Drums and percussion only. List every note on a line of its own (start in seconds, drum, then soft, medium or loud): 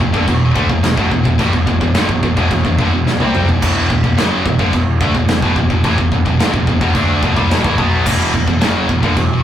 0.00 kick loud
0.14 kick medium
0.28 kick medium
0.28 china medium
0.56 kick loud
0.70 kick medium
0.83 snare loud
0.83 china medium
0.97 kick loud
1.11 kick medium
1.25 kick medium
1.39 kick medium
1.39 china medium
1.53 kick medium
1.67 kick medium
1.81 kick medium
1.94 snare loud
1.94 china medium
2.09 kick medium
2.23 kick medium
2.37 kick medium
2.51 kick medium
2.51 china medium
2.65 kick medium
2.79 kick medium
3.07 snare medium
3.20 high tom medium
3.35 mid tom medium
3.49 floor tom medium
3.62 kick loud
3.62 china medium
3.62 crash loud
3.90 kick medium
4.04 kick medium
4.18 snare loud
4.18 china medium
4.46 kick loud
4.59 kick medium
4.73 kick medium
4.73 china medium
5.01 kick loud
5.15 kick medium
5.28 snare loud
5.28 china medium
5.42 kick loud
5.56 kick medium
5.70 kick medium
5.84 kick medium
5.84 china medium
5.98 kick medium
6.12 kick medium
6.26 kick medium
6.40 snare loud
6.40 china medium
6.54 kick medium
6.67 kick medium
6.81 kick medium
6.95 kick loud
6.95 china medium
7.23 kick loud
7.37 kick medium
7.51 snare loud
7.51 china medium
7.64 kick loud
7.78 kick medium
8.06 kick loud
8.06 crash loud
8.06 china medium
8.34 kick medium
8.48 kick medium
8.61 snare loud
8.61 china medium
8.89 kick loud
9.03 kick medium
9.17 kick medium
9.17 china medium